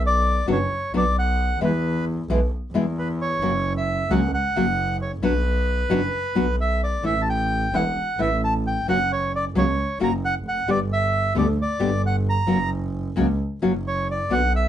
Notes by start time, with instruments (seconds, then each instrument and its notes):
Already playing: double bass B1
0.06 bandoneon D5
0.47 double bass F#1, nylon-string guitar B2 F#3 B3 D4 F#4
0.52 bandoneon C#5
0.93 double bass B1, nylon-string guitar B2 F#3 B3 D4 F#4
0.97 bandoneon D5
1.19 bandoneon F#5
1.61 double bass E2, nylon-string guitar B2 E3 G#3 B3 E4, bandoneon B4
2.29 double bass B1, nylon-string guitar B2 E3 G#3 B3 E4
2.73 double bass E2, nylon-string guitar B2 E3 G#3 B3 E4
2.99 bandoneon B4
3.22 bandoneon C#5
3.41 double bass F#1, nylon-string guitar C#3 F#3 A#3 C#4 F#4
3.77 bandoneon E5
4.09 double bass C#2, nylon-string guitar C#3 F#3 A#3 C#4 F#4, bandoneon F#5
4.34 bandoneon F#5
4.54 double bass F#1, nylon-string guitar C#3 F#3 A#3 C#4 F#4
5.02 bandoneon C#5
5.22 double bass B1, nylon-string guitar B2 F#3 B3 D4 F#4, bandoneon B4
5.90 double bass F#1, nylon-string guitar B2 F#3 B3 D4 F#4
6.35 double bass B1, nylon-string guitar B2 F#3 B3 D4 F#4
6.61 bandoneon E5
6.84 bandoneon D5
7.03 double bass A1, nylon-string guitar E3 A3 C#4 E4, bandoneon E5
7.22 bandoneon A5
7.30 bandoneon G5
7.73 double bass E1, nylon-string guitar E3 A3 C#4 E4, bandoneon F#5
8.18 double bass A1, nylon-string guitar E3 A3 C#4 E4, bandoneon E5
8.44 bandoneon A5
8.67 bandoneon G5
8.87 double bass F#1, nylon-string guitar C#3 F#3 A#3 C#4 F#4, bandoneon F#5
9.13 bandoneon C#5
9.36 bandoneon D5
9.55 double bass C#2, nylon-string guitar C#3 F#3 A#3 C#4 F#4, bandoneon C#5
10.00 double bass F#1, nylon-string guitar C#3 F#3 A#3 C#4 F#4, bandoneon A#5
10.25 bandoneon F#5
10.45 double bass F1, bandoneon F#5
10.68 double bass G1, nylon-string guitar B2 D3 G3 B3 G4, bandoneon D5
10.93 bandoneon E5
11.35 double bass D2, nylon-string guitar B2 D3 G3 B3 G4, bandoneon D5
11.62 bandoneon D5
11.79 double bass G1, nylon-string guitar B2 D3 G3 B3 G4
12.06 bandoneon F#5
12.29 bandoneon A#5
12.47 double bass F#1, nylon-string guitar C#3 F#3 A#3 C#4 F#4
13.16 double bass C#2, nylon-string guitar C#3 F#3 A#3 C#4 F#4
13.62 double bass F#1, nylon-string guitar C#3 F#3 A#3 C#4 F#4
13.87 bandoneon C#5
14.11 bandoneon D5
14.30 double bass B1, nylon-string guitar B2 D3 B3 C#4 F#4, bandoneon F#5
14.56 bandoneon E5